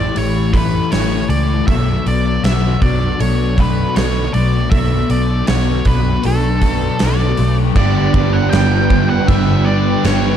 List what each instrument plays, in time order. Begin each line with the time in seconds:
Already playing: distorted electric guitar A2 E3 A3, overdriven electric guitar A2 E3 G3 C#4 G4, twelve-string acoustic guitar E3 G4, lead electric guitar D5
0.14 picked electric bass A1, distorted electric guitar A2 E3 A3, twelve-string acoustic guitar E3, lead electric guitar C#5, open hi-hat
0.52 distorted electric guitar E3 A3, twelve-string acoustic guitar A3, lead electric guitar B4, kick, open hi-hat
0.91 picked electric bass A1, distorted electric guitar A2 E3 A3, twelve-string acoustic guitar E3, lead electric guitar C#5, snare, open hi-hat
1.29 picked electric bass C#2, distorted electric guitar E3 A3, twelve-string acoustic guitar A3, lead electric guitar D5, open hi-hat
1.67 picked electric bass B1, distorted electric guitar B2 F#3, overdriven electric guitar B2 F#3 B3 D4 F#4, twelve-string acoustic guitar A3, lead electric guitar E5, kick, open hi-hat
1.71 distorted electric guitar B3
2.06 picked electric bass B1, distorted electric guitar F#3 B3, lead electric guitar D5, open hi-hat
2.44 picked electric bass B1, distorted electric guitar B2 F#3 B3, twelve-string acoustic guitar F#4, lead electric guitar E5, snare, open hi-hat
2.81 picked electric bass B1, distorted electric guitar F#3 B3, twelve-string acoustic guitar D4, lead electric guitar D5, kick, open hi-hat
3.19 picked electric bass B1, distorted electric guitar B2 F#3 B3, twelve-string acoustic guitar A3, lead electric guitar C#5, open hi-hat
3.56 distorted electric guitar F#3 B3, twelve-string acoustic guitar A3, kick, open hi-hat
3.61 lead electric guitar B4
3.95 picked electric bass B1, distorted electric guitar B2 F#3 B3, twelve-string acoustic guitar A3, lead electric guitar C#5, snare, open hi-hat
4.33 picked electric bass B1, distorted electric guitar F#3 B3, twelve-string acoustic guitar A3, lead electric guitar D5, open hi-hat
4.71 picked electric bass B1, distorted electric guitar B2 F#3, overdriven electric guitar B2 F#3 B3 D4 F#4, twelve-string acoustic guitar A3, lead electric guitar E5, kick, open hi-hat
4.75 distorted electric guitar B3
5.09 picked electric bass B1, distorted electric guitar F#3 B3, lead electric guitar D5, open hi-hat
5.47 picked electric bass B1, distorted electric guitar B2 F#3 B3, twelve-string acoustic guitar F#4, lead electric guitar C#5, snare, open hi-hat
5.85 picked electric bass B1, distorted electric guitar F#3 B3, twelve-string acoustic guitar D4, lead electric guitar B4, kick, open hi-hat
6.24 picked electric bass B1, distorted electric guitar B2 F#3, twelve-string acoustic guitar A3, lead electric guitar A4, open hi-hat
6.28 distorted electric guitar B3
6.61 distorted electric guitar F#3 B3, twelve-string acoustic guitar A3, kick, open hi-hat
6.99 picked electric bass B1, distorted electric guitar B2 F#3 B3, twelve-string acoustic guitar A3, lead electric guitar D5, snare, open hi-hat
7.37 picked electric bass B1, twelve-string acoustic guitar A3, distorted electric guitar B3, open hi-hat
7.42 distorted electric guitar F#3
7.75 picked electric bass G1, overdriven electric guitar G2 D3 G3 B3 D4 G4, distorted electric guitar G2 D3 G3 B3 D4, analog synth pad B4 G5, lead electric guitar D5, kick, crash
7.80 distorted electric guitar G3
8.14 picked electric bass G1, distorted electric guitar G2 D3 G3 B3 D4, twelve-string acoustic guitar B3, kick
8.19 distorted electric guitar D3
8.33 lead electric guitar F#5
8.50 picked electric bass G1, distorted electric guitar G2 D3 G3 B3 D4, lead electric guitar G5, snare, crash
8.54 distorted electric guitar D3 G3, twelve-string acoustic guitar B3
8.90 distorted electric guitar G2 D3 G3 B3 D4, kick
8.94 distorted electric guitar D3
9.10 lead electric guitar F#5
9.28 picked electric bass G1, distorted electric guitar G2 D3 G3 B3 D4, twelve-string acoustic guitar B3, lead electric guitar E5, kick, crash
9.65 distorted electric guitar G2 D3 G3 B3 D4, twelve-string acoustic guitar D4, lead electric guitar D5
9.70 distorted electric guitar D3
10.04 picked electric bass G1, distorted electric guitar G2 D3 G3 B3 D4, lead electric guitar C#5, snare, crash
10.08 distorted electric guitar G3